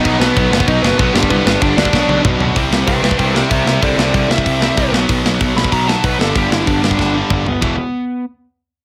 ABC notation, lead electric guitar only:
X:1
M:4/4
L:1/8
Q:1/4=190
K:Clyd
V:1 name="Lead electric guitar"
[^D^d] [B,B]2 [B,B] [Dd] [B,B] [B,B] [G,G] | [B,B] [B,B] [Dd] [Dd]3 z2 | z2 [Bg] [Bg] [Bg] [Ge] [Ge] [Ge] | [Ad] [Ad] [Ad] e4 z |
z3 b ^a =a B A | G E D D2 z3 | z8 |]